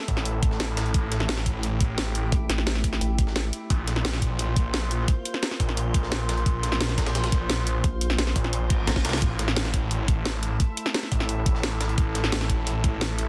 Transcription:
Already playing: A3 E4 A4
0.08 A1, kick, closed hi-hat, open hi-hat
0.17 snare
0.25 closed hi-hat
0.43 kick, closed hi-hat
0.51 snare
0.60 A1, snare, closed hi-hat
0.77 snare, closed hi-hat
0.86 closed hi-hat
0.94 G4, kick, closed hi-hat
1.12 snare, closed hi-hat
1.20 snare
1.29 snare, closed hi-hat
1.37 snare, closed hi-hat
1.46 kick, closed hi-hat
1.63 closed hi-hat
1.81 kick, closed hi-hat
1.98 snare, closed hi-hat
2.06 snare
2.15 closed hi-hat
2.32 A1, kick, closed hi-hat
2.49 A1, snare, closed hi-hat
2.58 snare
2.67 snare, closed hi-hat
2.75 snare
2.84 kick, closed hi-hat, open hi-hat
2.93 snare
3.01 A1, closed hi-hat
3.18 kick, closed hi-hat
3.27 snare
3.36 snare, closed hi-hat
3.53 closed hi-hat
3.70 A#1 A#3 F4 C5, kick, closed hi-hat
3.87 snare, closed hi-hat
3.96 snare
4.05 snare, closed hi-hat
4.13 snare, closed hi-hat
4.22 kick, closed hi-hat
4.39 closed hi-hat
4.56 kick, closed hi-hat
4.74 snare, closed hi-hat
4.82 snare
4.91 closed hi-hat
5.08 kick, closed hi-hat
5.25 closed hi-hat
5.34 snare
5.43 snare, closed hi-hat
5.51 snare
5.60 A#1, kick, closed hi-hat, open hi-hat
5.69 snare
5.77 closed hi-hat
5.94 kick, closed hi-hat
6.03 snare
6.12 A#1, snare, closed hi-hat
6.29 snare, closed hi-hat
6.38 closed hi-hat
6.46 A#1, kick, closed hi-hat
6.63 snare, closed hi-hat
6.72 snare
6.81 snare, closed hi-hat
6.89 snare, closed hi-hat
6.98 kick, snare, closed hi-hat
7.06 snare, closed hi-hat
7.15 snare, closed hi-hat
7.24 snare, closed hi-hat
7.32 kick, snare, closed hi-hat
7.50 snare, closed hi-hat
7.58 snare
7.67 closed hi-hat
7.84 A#1, kick, closed hi-hat
8.01 closed hi-hat
8.10 snare
8.18 A#1, snare, closed hi-hat
8.27 snare
8.36 A#1, kick, closed hi-hat, open hi-hat
8.44 snare
8.53 closed hi-hat, reverse cymbal
8.70 kick, closed hi-hat
8.87 A#1, snare, closed hi-hat
8.96 kick, snare
9.05 C2, snare, closed hi-hat
9.09 snare, closed hi-hat
9.13 snare, closed hi-hat
9.18 snare, closed hi-hat
9.22 A1 A3 E4 A4, kick, closed hi-hat
9.39 snare, closed hi-hat
9.48 snare
9.56 snare, closed hi-hat
9.65 snare, closed hi-hat
9.74 kick, closed hi-hat
9.91 closed hi-hat
10.08 kick, closed hi-hat
10.25 snare, closed hi-hat
10.34 snare
10.43 closed hi-hat
10.60 kick, closed hi-hat
10.77 closed hi-hat
10.86 snare
10.94 snare, closed hi-hat
11.03 snare
11.12 A1, kick, closed hi-hat, open hi-hat
11.20 snare
11.29 closed hi-hat
11.46 kick, closed hi-hat
11.55 snare
11.63 A1, snare, closed hi-hat
11.81 snare, closed hi-hat
11.89 closed hi-hat
11.98 A1, kick, closed hi-hat
12.15 snare, closed hi-hat
12.24 snare
12.32 snare, closed hi-hat
12.41 snare, closed hi-hat
12.50 kick, closed hi-hat
12.67 closed hi-hat
12.84 kick, closed hi-hat
13.01 snare, closed hi-hat
13.10 snare
13.18 closed hi-hat

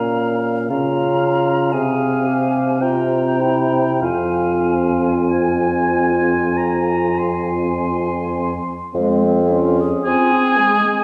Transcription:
Already playing: A#2 C#4 F5 A#5
0.70 C#3 C#4 F4 F5 A#5
1.73 C3 C4 G#4 F5 G#5
2.27 G4
2.81 C3 C4 F4 G5 A#5
3.39 E4
4.01 F2 C4 F4 F5 G#5
5.31 G#5
6.57 A#5
7.19 C6
8.94 F2 G#3 C4
9.24 C4
9.50 C#4 F4
9.81 G#4
10.04 C4 F4 G#4 G#5
10.32 C4
10.58 G#3
10.84 C4

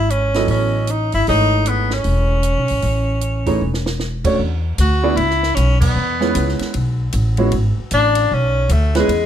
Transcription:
Already playing: G#1 E4
0.10 C#4, closed hi-hat
0.34 F#3 B3 E4 A4 D#5, snare, open hi-hat
0.48 A1 C#4, open hi-hat
0.87 D#4, closed hi-hat
1.12 G1 E4, open hi-hat
1.27 G#1 E3 A3 D#4 G#4 C#5, open hi-hat
1.66 B3, closed hi-hat
1.90 C#4, snare
2.04 E1, open hi-hat
2.43 closed hi-hat
2.57 B1
2.68 A1, open hi-hat
2.82 A1, open hi-hat
3.21 closed hi-hat
3.46 E3 A3 D#4 G#4 C#5, kick, open hi-hat
3.61 E1
3.74 snare
3.86 snare
4.00 snare
4.25 A3 C#4 D4 F#4 C#5, kick, crash
4.39 E2
4.78 D2 F#4, hi-hat pedal, ride
5.03 B3 D4 E4 G#4 D5
5.16 C#2 E4, ride
5.31 snare
5.43 snare
5.55 B1 C#4, hi-hat pedal, ride
5.81 B3, kick, crash
5.96 E2
6.21 G#3 B3 C#4 E4 B4, snare
6.35 C#2, hi-hat pedal, ride
6.49 snare
6.59 muted upright bass stroke, snare, ride
6.74 B1, ride
7.13 A1, hi-hat pedal, ride
7.37 G#3 B3 C#4 E4 F#4, ride
7.52 G#1, ride
7.78 muted upright bass stroke
7.91 A1 D4, hi-hat pedal, ride
8.15 ride
8.31 B1 C#4
8.69 D2 A3, hi-hat pedal, ride
8.95 G#3 B3 C#4 E4 B4, snare, ride
8.99 G#3
9.08 E2, ride

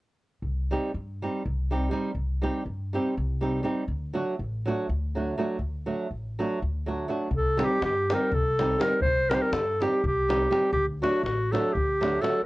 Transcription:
0.42 C2
0.71 G3 C4 D#4 G4
0.94 G2
1.22 G3 C4 D#4 G4
1.46 C2
1.71 G3 C4 D#4 G4
1.91 G3 C4 D#4 G4
2.15 C2
2.42 G3 C4 D#4 G4
2.66 G2
2.93 G3 C4 D#4 G4
3.17 C2
3.41 G3 C4 D#4 G4
3.63 G3 C4 D#4 G4
3.88 D2
4.13 F#3 A3 D4 F#4
4.39 A1
4.66 F#3 A3 D4 F#4
4.89 D2
5.15 F#3 A3 D4 F#4
5.38 F#3 A3 D4 F#4
5.59 D2
5.86 F#3 A3 D4 F#4
6.10 A1
6.39 F#3 A3 D4 F#4
6.62 D2
6.86 F#3 A3 D4 F#4
7.08 F#3 A3 D4 F#4
7.31 C2, davul low
7.36 A4
7.57 G3 C4 D#4 G4, davul high
7.64 G4
7.82 G2 G4, davul high
8.10 G3 C4 D#4 G4 A#4, davul high
8.31 C2 A4, davul low
8.59 G3 C4 D#4 G4, davul high
8.79 G3 C4 D#4 G4 A#4, davul high
9.01 C2 C5, davul low
9.30 G3 C4 D#4 G4 A#4, davul high
9.34 C5
9.42 A#4
9.52 G2 A4, davul high
9.80 G3 C4 D#4 G4, davul high
10.04 C2 G4, davul low
10.29 G3 C4 D#4 G4, davul high
10.50 G3 C4 D#4 G4, davul high
10.72 D2 G4, davul low
11.02 F#3 A3 D4 F#4, davul high
11.23 A1 F#4, davul high
11.52 F#3 A3 D4 F#4 A4, davul high
11.73 D2 G4, davul low
12.01 F#3 A3 D4 F#4, davul high
12.21 F#3 A3 D4 F#4 A4, davul high

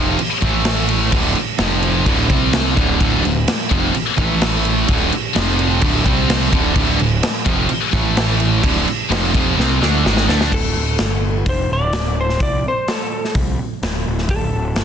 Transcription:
Already playing: F1 F2 C3 F3
0.18 muted distorted electric guitar stroke, muted picked electric bass stroke, muted overdriven electric guitar stroke, crash
0.41 A1 A2 E3 A3, kick, crash
0.65 snare, crash
0.89 crash
1.12 D1 D2 A2 D3, kick, crash
1.35 muted distorted electric guitar stroke, muted overdriven electric guitar stroke, muted picked electric bass stroke, crash
1.58 F1 F2 C3 F3, snare, crash
1.83 crash
2.06 D1 D2 A2 D3, kick, crash
2.28 C2 C3 G3 C4, kick, crash
2.53 snare, crash
2.76 D1 D2 A2 D3, kick, crash
2.99 D1 D2 A2 D3, kick, crash
3.24 D1 D2 A2, crash
3.48 snare, crash
3.69 F1 F2 C3 F3, kick, crash
3.94 muted distorted electric guitar stroke, muted picked electric bass stroke, muted overdriven electric guitar stroke, crash
4.16 A1 A2 E3 A3, kick, crash
4.41 snare, crash
4.65 crash
4.88 D1 D2 A2 D3, kick, crash
5.11 muted distorted electric guitar stroke, muted picked electric bass stroke, muted overdriven electric guitar stroke, crash
5.33 F1 F2 C3 F3, snare, crash
5.59 crash
5.81 D1 D2 A2 D3, kick, crash
6.05 C2 C3 G3 C4, kick, crash
6.30 snare, crash
6.52 D1 D2 A2 D3, kick, crash
6.75 D1 D2 A2 D3, kick, crash
6.98 D1 D2 A2, crash
7.23 snare, crash
7.45 F1 F2 C3 F3, kick, crash
7.68 muted distorted electric guitar stroke, muted picked electric bass stroke, muted overdriven electric guitar stroke, crash
7.91 A1 A2 E3 A3, kick, crash
8.17 snare, crash
8.40 crash
8.62 D1 D2 A2 D3, kick, crash
8.87 muted distorted electric guitar stroke, muted overdriven electric guitar stroke, muted picked electric bass stroke, crash
9.09 F1 F2 C3 F3, snare, crash
9.33 F1 F2 C3 F3, kick, crash
9.56 C2 C3 G3 C4, snare
9.80 D2 D3 A3 D4, snare
10.04 G#1 G#2 D#3 G#3, snare
10.17 snare
10.27 D2 D3 A3 D4, snare
10.41 snare
10.52 D1 A4, kick, crash
10.75 D1
10.98 G1, snare, open hi-hat
11.46 F1 C5, kick, open hi-hat
11.70 D1 D5
11.93 D1, snare, open hi-hat
12.21 C5
12.29 snare
12.40 C2 D5, kick, open hi-hat
12.68 C5
12.88 A4, snare, open hi-hat
13.25 snare
13.35 C2, kick, open hi-hat
13.59 muted picked electric bass stroke
13.83 D1, snare, open hi-hat
14.07 D1
14.18 snare
14.29 D1 A4, kick, open hi-hat
14.53 D1
14.75 G1, snare, open hi-hat

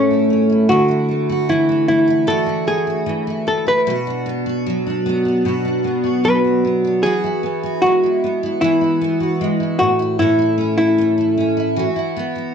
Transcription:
Already playing: A2 A3 C#4 E4 A4
0.11 E4
0.30 C#4
0.50 E4
0.69 D3 F#4
0.88 E4
1.09 A3
1.30 F#4
1.49 E3 E4
1.69 E4
1.88 A3 E4
2.08 E4
2.27 D3 F#4 A4
2.46 E4
2.67 A3 G#4
2.87 F#4
3.06 E3
3.27 E4
3.47 A3 A4
3.67 E4 B4
3.87 B2 F#4
4.07 D4
4.26 B3
4.46 F#4
4.66 F#3
4.87 D4
5.06 B3
5.25 D4
5.45 B2 F#4
5.65 D4
5.84 B3
6.04 F#4
6.24 F#3 B4
6.44 D4
6.65 B3
6.85 D4
7.03 E3 F#4 G#4
7.24 E4
7.43 B3
7.63 F#4
7.82 G#3 F#4
8.04 E4
8.24 B3
8.43 E4
8.61 E3 E4 F#4
8.81 E4
9.01 B3
9.20 F#4
9.41 G#3
9.60 E4
9.79 A2 F#4
9.99 E4
10.19 A2 E4 A4
10.39 E4
10.58 C#4
10.78 E4 A4
10.98 A3
11.18 E4
11.38 C#4
11.57 E4
11.76 E3 F#4
11.96 E4
12.16 B3
12.35 F#4

